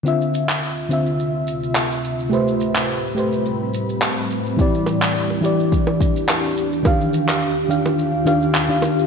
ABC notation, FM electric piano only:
X:1
M:4/4
L:1/16
Q:"Swing 16ths" 1/4=106
K:Ddor
V:1 name="FM electric piano"
[D,CFe]6 [D,CFe]8- [D,CFe]2 | [A,GBc]6 [A,GBc]8- [A,GBc]2 | [E,EGd]6 [E,EGd]8- [E,EGd]2 | [_E,DGf]6 [E,DGf]4 [E,DGf]3 [E,DGf]3 |]